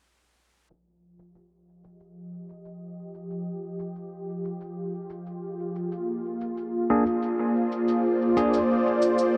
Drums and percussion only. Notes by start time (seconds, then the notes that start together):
0.70 shaker
1.19 shaker
1.35 shaker
1.84 shaker
2.00 shaker
2.49 shaker
2.65 shaker
3.14 shaker
3.31 shaker
3.79 shaker
3.96 shaker
4.45 shaker
4.61 shaker
5.10 shaker
5.26 shaker
5.76 shaker
5.92 shaker
6.41 shaker
6.57 shaker
7.06 shaker
7.23 shaker
7.72 shaker
7.88 shaker
8.37 shaker
8.54 shaker
9.02 shaker
9.18 shaker